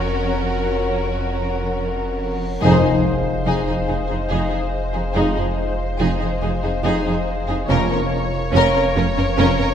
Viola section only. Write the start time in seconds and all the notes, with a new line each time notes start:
Already playing: C#4
2.63 D#4
2.83 D#4
3.47 D#4
3.68 D#4
3.88 D#4
4.11 D#4
4.31 D#4
4.52 D#4
4.94 D#4
5.16 D#4
5.37 D#4
6.00 D#4
6.21 D#4
6.42 D#4
6.63 D#4
6.84 D#4
7.06 D#4
7.49 D#4
7.69 C#4
7.90 C#4
8.53 C#4
8.75 C#4
8.96 C#4
9.17 C#4
9.38 C#4
9.60 C#4